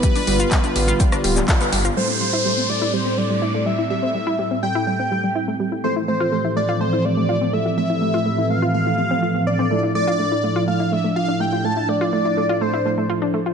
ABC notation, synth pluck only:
X:1
M:4/4
L:1/16
Q:1/4=124
K:Am
V:1 name="Synth pluck"
G, D G, F G, D G, F G, D G, G, F B, G, F | G, C G, E G, C G, E G, C G, G, E A, G, E | G, C G, E G, C G, E G, C G, G, E A, G, E | A, E A, F A, E A, F A, E A, A, F C A, F |
A, E A, F A, E A, F A, E C C F C C C | A, E A, F A, E A, F A, E A, A, F D A, F | A, E A, F A, E A, F A, E A, A, F D A, F |]